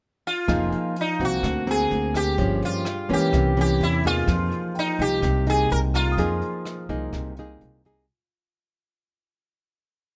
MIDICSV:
0, 0, Header, 1, 6, 480
1, 0, Start_track
1, 0, Key_signature, -4, "minor"
1, 0, Tempo, 473934
1, 496, Time_signature, 4, 2, 24, 8
1, 10283, End_track
2, 0, Start_track
2, 0, Title_t, "Grand piano"
2, 0, Program_c, 0, 0
2, 488, Note_on_c, 0, 77, 45
2, 669, Note_on_c, 0, 80, 34
2, 678, Control_c, 0, 64, 127
2, 1117, Note_off_c, 0, 77, 0
2, 1268, Note_off_c, 0, 80, 0
2, 1472, Control_c, 0, 64, 0
2, 4513, Control_c, 0, 64, 127
2, 4810, Note_on_c, 0, 79, 42
2, 5441, Note_off_c, 0, 79, 0
2, 6022, Note_on_c, 0, 82, 38
2, 6195, Note_on_c, 0, 87, 34
2, 6647, Note_off_c, 0, 82, 0
2, 6793, Note_off_c, 0, 87, 0
2, 8196, Control_c, 0, 64, 0
2, 10283, End_track
3, 0, Start_track
3, 0, Title_t, "Sitar"
3, 0, Program_c, 1, 104
3, 274, Note_on_c, 1, 65, 72
3, 1007, Note_off_c, 1, 65, 0
3, 1020, Note_on_c, 1, 63, 73
3, 1245, Note_off_c, 1, 63, 0
3, 1262, Note_on_c, 1, 66, 76
3, 1725, Note_off_c, 1, 66, 0
3, 1729, Note_on_c, 1, 68, 79
3, 2191, Note_off_c, 1, 68, 0
3, 2195, Note_on_c, 1, 67, 81
3, 2635, Note_off_c, 1, 67, 0
3, 2684, Note_on_c, 1, 65, 73
3, 3167, Note_off_c, 1, 65, 0
3, 3173, Note_on_c, 1, 67, 89
3, 3642, Note_off_c, 1, 67, 0
3, 3654, Note_on_c, 1, 67, 85
3, 3881, Note_on_c, 1, 64, 78
3, 3885, Note_off_c, 1, 67, 0
3, 4117, Note_off_c, 1, 64, 0
3, 4121, Note_on_c, 1, 65, 93
3, 4846, Note_off_c, 1, 65, 0
3, 4850, Note_on_c, 1, 63, 83
3, 5079, Note_on_c, 1, 67, 94
3, 5083, Note_off_c, 1, 63, 0
3, 5519, Note_off_c, 1, 67, 0
3, 5567, Note_on_c, 1, 68, 97
3, 5787, Note_off_c, 1, 68, 0
3, 5791, Note_on_c, 1, 70, 107
3, 5854, Note_off_c, 1, 70, 0
3, 6031, Note_on_c, 1, 65, 81
3, 7666, Note_off_c, 1, 65, 0
3, 10283, End_track
4, 0, Start_track
4, 0, Title_t, "Nylon-string guitar"
4, 0, Program_c, 2, 24
4, 483, Note_on_c, 2, 53, 58
4, 487, Note_on_c, 2, 58, 60
4, 490, Note_on_c, 2, 63, 58
4, 490, Note_on_c, 2, 68, 61
4, 968, Note_off_c, 2, 58, 0
4, 970, Note_off_c, 2, 68, 0
4, 971, Note_off_c, 2, 63, 0
4, 1223, Note_on_c, 2, 58, 63
4, 1223, Note_on_c, 2, 66, 69
4, 1226, Note_on_c, 2, 60, 57
4, 1427, Note_off_c, 2, 53, 0
4, 1458, Note_on_c, 2, 50, 51
4, 1661, Note_off_c, 2, 66, 0
4, 1662, Note_off_c, 2, 58, 0
4, 1664, Note_off_c, 2, 60, 0
4, 1691, Note_on_c, 2, 58, 55
4, 1696, Note_on_c, 2, 60, 54
4, 1700, Note_on_c, 2, 66, 60
4, 2377, Note_off_c, 2, 58, 0
4, 2380, Note_off_c, 2, 60, 0
4, 2381, Note_off_c, 2, 66, 0
4, 2395, Note_off_c, 2, 50, 0
4, 2404, Note_on_c, 2, 43, 57
4, 2411, Note_on_c, 2, 53, 57
4, 2414, Note_on_c, 2, 58, 51
4, 2419, Note_on_c, 2, 61, 59
4, 2892, Note_off_c, 2, 58, 0
4, 2893, Note_off_c, 2, 53, 0
4, 2897, Note_off_c, 2, 61, 0
4, 3130, Note_on_c, 2, 52, 66
4, 3136, Note_on_c, 2, 58, 65
4, 3142, Note_on_c, 2, 61, 68
4, 3350, Note_off_c, 2, 43, 0
4, 3380, Note_on_c, 2, 48, 57
4, 3578, Note_off_c, 2, 52, 0
4, 3581, Note_off_c, 2, 58, 0
4, 3581, Note_off_c, 2, 61, 0
4, 3614, Note_on_c, 2, 52, 58
4, 3621, Note_on_c, 2, 58, 53
4, 3621, Note_on_c, 2, 61, 60
4, 4061, Note_off_c, 2, 52, 0
4, 4062, Note_off_c, 2, 58, 0
4, 4063, Note_off_c, 2, 61, 0
4, 4102, Note_on_c, 2, 63, 56
4, 4107, Note_on_c, 2, 58, 56
4, 4113, Note_on_c, 2, 68, 64
4, 4318, Note_off_c, 2, 48, 0
4, 4339, Note_on_c, 2, 53, 57
4, 5025, Note_off_c, 2, 63, 0
4, 5027, Note_off_c, 2, 58, 0
4, 5030, Note_off_c, 2, 68, 0
4, 5064, Note_on_c, 2, 58, 64
4, 5064, Note_on_c, 2, 63, 71
4, 5278, Note_off_c, 2, 53, 0
4, 5298, Note_on_c, 2, 48, 53
4, 5505, Note_off_c, 2, 63, 0
4, 5506, Note_off_c, 2, 58, 0
4, 5539, Note_on_c, 2, 58, 54
4, 5541, Note_on_c, 2, 63, 55
4, 5548, Note_on_c, 2, 68, 60
4, 6224, Note_off_c, 2, 58, 0
4, 6224, Note_off_c, 2, 63, 0
4, 6226, Note_off_c, 2, 68, 0
4, 6237, Note_off_c, 2, 48, 0
4, 6256, Note_on_c, 2, 53, 53
4, 6262, Note_on_c, 2, 58, 53
4, 6265, Note_on_c, 2, 63, 53
4, 6270, Note_on_c, 2, 68, 62
4, 6944, Note_off_c, 2, 63, 0
4, 6945, Note_off_c, 2, 58, 0
4, 6949, Note_off_c, 2, 68, 0
4, 6981, Note_on_c, 2, 58, 64
4, 6985, Note_on_c, 2, 63, 57
4, 6987, Note_on_c, 2, 68, 64
4, 7196, Note_off_c, 2, 53, 0
4, 7235, Note_on_c, 2, 48, 48
4, 7424, Note_off_c, 2, 63, 0
4, 7425, Note_off_c, 2, 58, 0
4, 7427, Note_off_c, 2, 68, 0
4, 7483, Note_on_c, 2, 58, 56
4, 7484, Note_on_c, 2, 63, 54
4, 7491, Note_on_c, 2, 68, 60
4, 7914, Note_off_c, 2, 63, 0
4, 7915, Note_off_c, 2, 58, 0
4, 7916, Note_off_c, 2, 68, 0
4, 7952, Note_on_c, 2, 58, 51
4, 7959, Note_on_c, 2, 63, 50
4, 7964, Note_on_c, 2, 68, 65
4, 8149, Note_off_c, 2, 58, 0
4, 8153, Note_off_c, 2, 63, 0
4, 8154, Note_off_c, 2, 68, 0
4, 8164, Note_off_c, 2, 48, 0
4, 10283, End_track
5, 0, Start_track
5, 0, Title_t, "Upright bass"
5, 0, Program_c, 3, 32
5, 490, Note_on_c, 3, 29, 86
5, 716, Note_off_c, 3, 29, 0
5, 1214, Note_on_c, 3, 36, 76
5, 1439, Note_off_c, 3, 36, 0
5, 1453, Note_on_c, 3, 38, 81
5, 1902, Note_off_c, 3, 38, 0
5, 1936, Note_on_c, 3, 38, 87
5, 2384, Note_off_c, 3, 38, 0
5, 2419, Note_on_c, 3, 31, 90
5, 2643, Note_off_c, 3, 31, 0
5, 3139, Note_on_c, 3, 37, 81
5, 3363, Note_off_c, 3, 37, 0
5, 3372, Note_on_c, 3, 36, 86
5, 3823, Note_off_c, 3, 36, 0
5, 3852, Note_on_c, 3, 40, 86
5, 4304, Note_off_c, 3, 40, 0
5, 4330, Note_on_c, 3, 41, 92
5, 4560, Note_off_c, 3, 41, 0
5, 5054, Note_on_c, 3, 36, 79
5, 5282, Note_off_c, 3, 36, 0
5, 5297, Note_on_c, 3, 36, 83
5, 5747, Note_off_c, 3, 36, 0
5, 5786, Note_on_c, 3, 36, 83
5, 6231, Note_off_c, 3, 36, 0
5, 6258, Note_on_c, 3, 41, 96
5, 6484, Note_off_c, 3, 41, 0
5, 6979, Note_on_c, 3, 36, 84
5, 7204, Note_off_c, 3, 36, 0
5, 7225, Note_on_c, 3, 36, 83
5, 7670, Note_off_c, 3, 36, 0
5, 7713, Note_on_c, 3, 36, 77
5, 8154, Note_off_c, 3, 36, 0
5, 10283, End_track
6, 0, Start_track
6, 0, Title_t, "Drums"
6, 489, Note_on_c, 9, 36, 57
6, 490, Note_on_c, 9, 37, 58
6, 490, Note_on_c, 9, 42, 53
6, 591, Note_off_c, 9, 36, 0
6, 591, Note_off_c, 9, 37, 0
6, 591, Note_off_c, 9, 42, 0
6, 731, Note_on_c, 9, 42, 45
6, 833, Note_off_c, 9, 42, 0
6, 973, Note_on_c, 9, 42, 47
6, 1074, Note_off_c, 9, 42, 0
6, 1210, Note_on_c, 9, 36, 22
6, 1213, Note_on_c, 9, 42, 40
6, 1311, Note_off_c, 9, 36, 0
6, 1314, Note_off_c, 9, 42, 0
6, 1450, Note_on_c, 9, 36, 51
6, 1450, Note_on_c, 9, 37, 53
6, 1450, Note_on_c, 9, 42, 54
6, 1551, Note_off_c, 9, 37, 0
6, 1551, Note_off_c, 9, 42, 0
6, 1552, Note_off_c, 9, 36, 0
6, 1691, Note_on_c, 9, 42, 45
6, 1792, Note_off_c, 9, 42, 0
6, 1932, Note_on_c, 9, 42, 46
6, 2034, Note_off_c, 9, 42, 0
6, 2172, Note_on_c, 9, 36, 19
6, 2172, Note_on_c, 9, 37, 57
6, 2172, Note_on_c, 9, 42, 40
6, 2273, Note_off_c, 9, 36, 0
6, 2273, Note_off_c, 9, 37, 0
6, 2273, Note_off_c, 9, 42, 0
6, 2410, Note_on_c, 9, 42, 60
6, 2413, Note_on_c, 9, 36, 56
6, 2511, Note_off_c, 9, 42, 0
6, 2514, Note_off_c, 9, 36, 0
6, 2657, Note_on_c, 9, 42, 46
6, 2758, Note_off_c, 9, 42, 0
6, 2889, Note_on_c, 9, 37, 59
6, 2889, Note_on_c, 9, 42, 43
6, 2990, Note_off_c, 9, 37, 0
6, 2990, Note_off_c, 9, 42, 0
6, 3133, Note_on_c, 9, 36, 21
6, 3133, Note_on_c, 9, 42, 38
6, 3234, Note_off_c, 9, 42, 0
6, 3235, Note_off_c, 9, 36, 0
6, 3370, Note_on_c, 9, 37, 53
6, 3370, Note_on_c, 9, 42, 53
6, 3373, Note_on_c, 9, 36, 53
6, 3472, Note_off_c, 9, 37, 0
6, 3472, Note_off_c, 9, 42, 0
6, 3475, Note_off_c, 9, 36, 0
6, 3614, Note_on_c, 9, 42, 44
6, 3716, Note_off_c, 9, 42, 0
6, 3853, Note_on_c, 9, 42, 47
6, 3954, Note_off_c, 9, 42, 0
6, 4088, Note_on_c, 9, 42, 39
6, 4093, Note_on_c, 9, 36, 22
6, 4190, Note_off_c, 9, 42, 0
6, 4194, Note_off_c, 9, 36, 0
6, 4329, Note_on_c, 9, 37, 60
6, 4329, Note_on_c, 9, 42, 58
6, 4333, Note_on_c, 9, 36, 63
6, 4430, Note_off_c, 9, 37, 0
6, 4430, Note_off_c, 9, 42, 0
6, 4434, Note_off_c, 9, 36, 0
6, 4572, Note_on_c, 9, 42, 39
6, 4674, Note_off_c, 9, 42, 0
6, 4810, Note_on_c, 9, 42, 46
6, 4912, Note_off_c, 9, 42, 0
6, 5053, Note_on_c, 9, 36, 21
6, 5053, Note_on_c, 9, 42, 36
6, 5154, Note_off_c, 9, 42, 0
6, 5155, Note_off_c, 9, 36, 0
6, 5290, Note_on_c, 9, 37, 58
6, 5290, Note_on_c, 9, 42, 56
6, 5294, Note_on_c, 9, 36, 55
6, 5391, Note_off_c, 9, 37, 0
6, 5391, Note_off_c, 9, 42, 0
6, 5395, Note_off_c, 9, 36, 0
6, 5535, Note_on_c, 9, 42, 48
6, 5636, Note_off_c, 9, 42, 0
6, 5774, Note_on_c, 9, 42, 48
6, 5875, Note_off_c, 9, 42, 0
6, 6015, Note_on_c, 9, 36, 21
6, 6017, Note_on_c, 9, 37, 51
6, 6017, Note_on_c, 9, 42, 42
6, 6116, Note_off_c, 9, 36, 0
6, 6119, Note_off_c, 9, 37, 0
6, 6119, Note_off_c, 9, 42, 0
6, 6255, Note_on_c, 9, 36, 59
6, 6256, Note_on_c, 9, 42, 62
6, 6357, Note_off_c, 9, 36, 0
6, 6357, Note_off_c, 9, 42, 0
6, 6496, Note_on_c, 9, 42, 43
6, 6598, Note_off_c, 9, 42, 0
6, 6740, Note_on_c, 9, 37, 64
6, 6740, Note_on_c, 9, 42, 46
6, 6841, Note_off_c, 9, 37, 0
6, 6841, Note_off_c, 9, 42, 0
6, 6978, Note_on_c, 9, 36, 22
6, 6979, Note_on_c, 9, 42, 37
6, 7079, Note_off_c, 9, 36, 0
6, 7080, Note_off_c, 9, 42, 0
6, 7219, Note_on_c, 9, 36, 55
6, 7219, Note_on_c, 9, 37, 53
6, 7219, Note_on_c, 9, 42, 47
6, 7320, Note_off_c, 9, 36, 0
6, 7320, Note_off_c, 9, 37, 0
6, 7320, Note_off_c, 9, 42, 0
6, 7459, Note_on_c, 9, 42, 46
6, 7561, Note_off_c, 9, 42, 0
6, 7706, Note_on_c, 9, 42, 41
6, 7807, Note_off_c, 9, 42, 0
6, 7943, Note_on_c, 9, 36, 22
6, 7950, Note_on_c, 9, 42, 38
6, 8044, Note_off_c, 9, 36, 0
6, 8052, Note_off_c, 9, 42, 0
6, 10283, End_track
0, 0, End_of_file